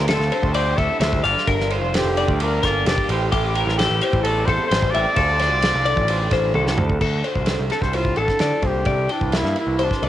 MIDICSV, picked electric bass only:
0, 0, Header, 1, 2, 480
1, 0, Start_track
1, 0, Key_signature, -1, "minor"
1, 0, Tempo, 462250
1, 1531, Time_signature, 4, 2, 24, 8
1, 10476, End_track
2, 0, Start_track
2, 0, Title_t, "Picked electric bass"
2, 0, Program_c, 0, 34
2, 0, Note_on_c, 0, 38, 80
2, 180, Note_off_c, 0, 38, 0
2, 199, Note_on_c, 0, 38, 80
2, 310, Note_off_c, 0, 38, 0
2, 443, Note_on_c, 0, 38, 78
2, 764, Note_off_c, 0, 38, 0
2, 810, Note_on_c, 0, 38, 88
2, 916, Note_off_c, 0, 38, 0
2, 1040, Note_on_c, 0, 38, 97
2, 1257, Note_off_c, 0, 38, 0
2, 1286, Note_on_c, 0, 31, 87
2, 1394, Note_off_c, 0, 31, 0
2, 1535, Note_on_c, 0, 31, 97
2, 1880, Note_off_c, 0, 31, 0
2, 1880, Note_on_c, 0, 29, 82
2, 2097, Note_off_c, 0, 29, 0
2, 2116, Note_on_c, 0, 29, 82
2, 2334, Note_off_c, 0, 29, 0
2, 2369, Note_on_c, 0, 38, 81
2, 2688, Note_off_c, 0, 38, 0
2, 2735, Note_on_c, 0, 31, 85
2, 2944, Note_off_c, 0, 31, 0
2, 2962, Note_on_c, 0, 29, 95
2, 3072, Note_off_c, 0, 29, 0
2, 3205, Note_on_c, 0, 33, 103
2, 3419, Note_off_c, 0, 33, 0
2, 3455, Note_on_c, 0, 33, 109
2, 3771, Note_off_c, 0, 33, 0
2, 3798, Note_on_c, 0, 33, 83
2, 4015, Note_off_c, 0, 33, 0
2, 4052, Note_on_c, 0, 33, 82
2, 4156, Note_off_c, 0, 33, 0
2, 4290, Note_on_c, 0, 33, 86
2, 4607, Note_off_c, 0, 33, 0
2, 4647, Note_on_c, 0, 33, 87
2, 4753, Note_off_c, 0, 33, 0
2, 4895, Note_on_c, 0, 33, 106
2, 5103, Note_off_c, 0, 33, 0
2, 5140, Note_on_c, 0, 33, 97
2, 5240, Note_off_c, 0, 33, 0
2, 5365, Note_on_c, 0, 38, 103
2, 5731, Note_off_c, 0, 38, 0
2, 5731, Note_on_c, 0, 36, 78
2, 5940, Note_off_c, 0, 36, 0
2, 5966, Note_on_c, 0, 36, 83
2, 6177, Note_off_c, 0, 36, 0
2, 6192, Note_on_c, 0, 33, 84
2, 6516, Note_off_c, 0, 33, 0
2, 6553, Note_on_c, 0, 33, 87
2, 6774, Note_off_c, 0, 33, 0
2, 6794, Note_on_c, 0, 36, 85
2, 7014, Note_off_c, 0, 36, 0
2, 7045, Note_on_c, 0, 38, 84
2, 7260, Note_off_c, 0, 38, 0
2, 7277, Note_on_c, 0, 38, 84
2, 7492, Note_off_c, 0, 38, 0
2, 7641, Note_on_c, 0, 36, 66
2, 7855, Note_off_c, 0, 36, 0
2, 7885, Note_on_c, 0, 36, 70
2, 7991, Note_off_c, 0, 36, 0
2, 8115, Note_on_c, 0, 36, 66
2, 8438, Note_off_c, 0, 36, 0
2, 8485, Note_on_c, 0, 33, 80
2, 8591, Note_off_c, 0, 33, 0
2, 8733, Note_on_c, 0, 50, 83
2, 8836, Note_off_c, 0, 50, 0
2, 8954, Note_on_c, 0, 36, 82
2, 9172, Note_off_c, 0, 36, 0
2, 9199, Note_on_c, 0, 36, 94
2, 9415, Note_off_c, 0, 36, 0
2, 9569, Note_on_c, 0, 36, 63
2, 9781, Note_off_c, 0, 36, 0
2, 9796, Note_on_c, 0, 43, 80
2, 9907, Note_off_c, 0, 43, 0
2, 10038, Note_on_c, 0, 36, 65
2, 10255, Note_off_c, 0, 36, 0
2, 10409, Note_on_c, 0, 36, 77
2, 10476, Note_off_c, 0, 36, 0
2, 10476, End_track
0, 0, End_of_file